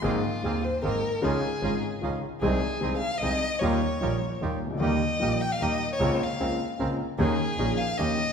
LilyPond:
<<
  \new Staff \with { instrumentName = "Violin" } { \time 3/4 \key aes \major \tempo 4 = 151 f'4. c''8 bes'4 | aes'2 r4 | aes'4. f''8 ees''4 | des''2 r4 |
ees''4. g''16 f''16 ees''8. des''16~ | des''8 f''4. r4 | aes'4. f''8 ees''4 | }
  \new Staff \with { instrumentName = "Bandoneon" } { \time 3/4 \key aes \major <bes c' aes'>8 r8 <bes c' aes'>8 r8 <bes c' aes'>8 r8 | <des' ees' f'>8 r8 <des' ees' f'>8 r8 <des' ees' f'>8 r8 | <c' ees' aes'>8 r8 <c' ees' aes'>8 r8 <c' ees' aes'>8 r8 | <ees' f' g'>8 r8 <ees' f' g'>8 r8 <ees' f' g'>8 r8 |
<bes ees' g'>8 r8 <bes ees' g'>8 r8 <bes ees' g'>8 r8 | <c' des' bes'>8 r8 <c' des' bes'>8 r8 <c' des' bes'>8 r8 | <des' ees' aes'>8 r8 <des' ees' aes'>8 r8 <des' ees' g'>8 r8 | }
  \new Staff \with { instrumentName = "Grand piano" } { \clef bass \time 3/4 \key aes \major <aes,, aes, ees bes c' aes'>8 r8 <ees,, ees, ees bes c' aes'>8 r8 <aes,, aes, ees bes c' aes'>8 r8 | <des, des ees aes des' f'>8 r8 <aes,, aes, ees aes des' f'>8 r8 <des, des ees aes des' f'>8 r8 | <c, c ees aes c' aes'>8 r8 <c, c ees aes c' aes'>8 r8 <c, c ees aes c' aes'>8 r8 | <ees, ees g bes f'>8 r8 <bes,, bes, ees g bes f'>8 r8 <ees, ees g bes f'>8 r32 c,32 des,32 d,32 |
<ees, ees g bes g'>8 r8 <bes,, bes, ees g bes g'>8 r8 <ees, ees g bes g'>8 r8 | <des, des bes c' f'>8 r8 <des, des bes c' f'>8 r8 <des, des bes c' f'>8 r8 | <ees, ees bes des' aes'>8 r8 <bes,, bes, ees bes des' aes'>8 r8 <ees, ees bes des' g'>8 r8 | }
  \new Staff \with { instrumentName = "Double bass" } { \clef bass \time 3/4 \key aes \major aes,,8 r8 ees,8 r8 aes,,8 r8 | des,8 r8 aes,,8 r8 des,8 r8 | c,8 r8 c,8 r8 c,8 r8 | ees,8 r8 bes,,8 r8 ees,8 des,8 |
ees,8 r8 bes,,8 r8 ees,8 r8 | des,8 r8 des,8 r8 des,8 r8 | ees,8 r8 bes,,8 r8 ees,8 r8 | }
>>